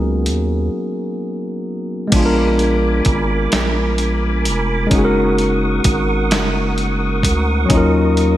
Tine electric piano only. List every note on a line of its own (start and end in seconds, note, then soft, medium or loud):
0.00 2.14 F#3 soft
0.00 2.14 A#3 medium
0.00 1.63 B3 medium
0.00 2.14 D#4 medium
0.00 2.14 F#4 medium
0.00 1.62 G#4 medium
2.08 4.85 G#3 medium
2.08 4.86 B3 medium
2.13 4.88 D4 medium
2.13 4.89 F4 medium
2.19 2.22 G#4 medium
2.26 4.94 A#4 medium
4.87 7.64 G#3 medium
4.87 7.65 C#4 medium
4.93 7.67 D#4 medium
4.93 7.68 F#4 medium
4.98 5.01 G#4 medium
5.05 7.73 A#4 medium
7.66 8.37 F#3 medium
7.66 8.37 C#4 medium
7.71 8.37 D#4 medium
7.71 8.37 F4 medium
7.77 8.37 A#4 medium